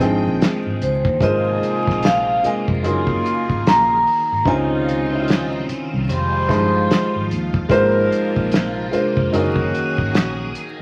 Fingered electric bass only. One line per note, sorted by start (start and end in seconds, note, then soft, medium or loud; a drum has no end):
0.00 0.23 G#1 medium
0.26 0.39 A#1 medium
0.66 0.80 G#1 medium
0.82 1.04 C#2 medium
1.06 1.23 D#2 medium
1.22 1.58 G#1 loud
1.88 2.39 A#1 medium
2.45 muted fingered electric bass stroke soft
2.69 2.85 F1 medium
2.85 3.21 F#1 medium
3.50 3.67 G#1 medium
3.67 4.03 A#1 medium
4.32 4.45 G#1 medium
4.47 5.64 C#2 medium
5.69 muted fingered electric bass stroke soft
5.94 6.07 C2 medium
6.09 6.50 F1 loud
6.50 6.86 G1 medium
7.16 7.33 G#1 medium
7.31 7.67 D#2 medium
7.71 8.07 G#1 loud
8.37 8.88 A#1 medium
8.94 muted fingered electric bass stroke soft
9.18 9.31 F1 medium
9.34 9.70 F#1 loud
9.99 10.12 G#1 medium
10.14 10.51 A#1 medium